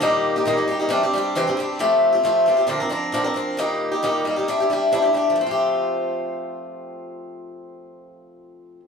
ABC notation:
X:1
M:4/4
L:1/16
Q:1/4=135
K:Fmix
V:1 name="Steel-string acoustic guitar"
[B,,E,G,B,EG]3 [G,B,EG] [B,,E,G,B,EG] [G,B,EG] [G,B,EG] [G,B,EG] [C,=E,G,CDG] [G,CDG] [G,CDG]2 [C,E,G,CDG] [G,CDG] [G,CDG]2 | [F,A,CFG]3 [CFG] [F,A,CFG]2 [A,CFG] [CFG] [B,,D,F,CDB] [F,CDB] [F,CDB]2 [B,,D,F,CDB] [F,CDB] [F,CDB]2 | [B,,E,G,B,EG]3 [G,B,EG] [B,,E,G,B,EG]2 [G,B,EG] [G,B,EG] [C,G,D=EG] [DEG] [G,DEG]2 [C,G,DEG] [DEG] [G,DEG]2 | [F,A,CFG]16- |
[F,A,CFG]16 |]